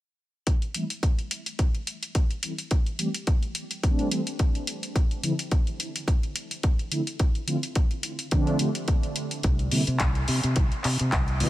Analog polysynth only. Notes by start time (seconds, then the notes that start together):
0.74 E3 G3 A3 C4 E4
2.43 E3 G3 A3 C4 E4
2.98 E3 G3 A3 C4 G4
3.83 E3 G3 A3 C4 D4
4.11 E3 G3 A3
5.23 D3 F3 A3 C4 E4
6.91 D3 F3 A3 C4 E4
7.47 D3 F3 A3 C4 F4
8.32 D3 F3 A3 C4 D4
8.60 D3 F3 A3 C4 G4
9.72 D3 G3 A#3 C4 E4
11.40 D3 G3 A#3 C4 E4